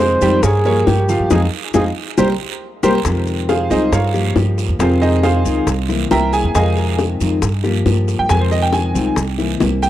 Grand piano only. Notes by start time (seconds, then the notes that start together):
0.00 G#3 G#4 C5
0.22 G3 G4 G5
0.44 A#3 A#4 C#5
0.66 A#3 A#4 C#5
1.09 F3 F4 F5
1.31 D#4 F4 G#4
1.74 D#4 F4 G#4
2.18 G4 A#4 C5
2.83 G4 A#4 C5
3.49 F4 G#4 C5 F5
3.71 D#4 G#4 C5 D#5
3.92 F4 A#4 C#5 F5
4.80 F4 G#4 C5 F5
5.02 D#4 G#4 C5 D#5
5.23 F4 G#4 C5 F5
6.11 A#4 E5 G5 A#5
6.33 G#4 G#5
6.55 G#4 D#5 F5 G#5
8.19 G5
8.30 G#5
8.41 C5
8.52 D#5
8.62 G5
8.73 G#5
9.83 G5